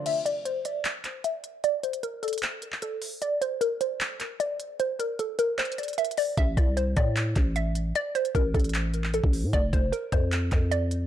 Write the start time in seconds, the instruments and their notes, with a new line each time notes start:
0.06 synth pluck E5, closed hi-hat, crash
0.26 synth pluck D5, closed hi-hat
0.45 synth pluck C5, closed hi-hat
0.65 synth pluck D5, closed hi-hat
0.85 clap, closed hi-hat
1.04 clap, closed hi-hat
1.24 synth pluck E5, closed hi-hat
1.44 closed hi-hat
1.64 synth pluck D5, closed hi-hat
1.83 synth pluck C5, closed hi-hat
1.93 closed hi-hat
2.03 synth pluck A#4, closed hi-hat
2.23 synth pluck A4, closed hi-hat
2.28 closed hi-hat
2.33 closed hi-hat
2.38 closed hi-hat
2.43 clap, closed hi-hat
2.62 closed hi-hat
2.72 clap
2.82 synth pluck A4, closed hi-hat
3.02 open hi-hat
3.22 synth pluck D5, closed hi-hat
3.41 synth pluck C5, closed hi-hat
3.61 synth pluck A#4, closed hi-hat
3.81 synth pluck C5, closed hi-hat
4.01 clap, closed hi-hat
4.20 clap, closed hi-hat
4.40 synth pluck D5, closed hi-hat
4.60 closed hi-hat
4.80 synth pluck C5, closed hi-hat
4.99 synth pluck A#4, closed hi-hat
5.19 synth pluck A4, closed hi-hat
5.39 synth pluck A#4, closed hi-hat
5.58 synth pluck C5, clap, closed hi-hat
5.65 closed hi-hat
5.72 closed hi-hat
5.78 synth pluck D5, closed hi-hat
5.83 closed hi-hat
5.88 closed hi-hat
5.93 closed hi-hat
5.98 synth pluck E5, closed hi-hat
6.05 closed hi-hat
6.11 closed hi-hat
6.17 synth pluck D5, open hi-hat
6.37 808-style bass A1, synth pluck E5, kick, closed hi-hat
6.57 808-style bass C2, synth pluck D5, kick, closed hi-hat
6.77 synth pluck C5, closed hi-hat
6.97 808-style bass A2, synth pluck D5, kick, closed hi-hat
7.16 clap, closed hi-hat
7.36 808-style bass A1, kick, clap, closed hi-hat
7.56 synth pluck E5, closed hi-hat
7.75 closed hi-hat
7.95 synth pluck D5, closed hi-hat
8.15 synth pluck C5, closed hi-hat
8.25 closed hi-hat
8.35 808-style bass A1, synth pluck A#4, kick, closed hi-hat
8.54 808-style bass A1, synth pluck A4, kick, closed hi-hat
8.59 closed hi-hat
8.64 closed hi-hat
8.69 closed hi-hat
8.74 clap, closed hi-hat
8.94 closed hi-hat
9.04 clap
9.14 synth pluck A4, closed hi-hat
9.24 808-style bass A1, kick
9.33 open hi-hat
9.43 808-style bass A2
9.53 808-style bass F1, synth pluck D5, kick, closed hi-hat
9.73 808-style bass F1, synth pluck C5, kick, closed hi-hat
9.92 synth pluck A#4, closed hi-hat
10.12 808-style bass F2, synth pluck C5, kick, closed hi-hat
10.32 clap, closed hi-hat
10.51 808-style bass F2, kick, clap, closed hi-hat
10.71 synth pluck D5, closed hi-hat
10.91 closed hi-hat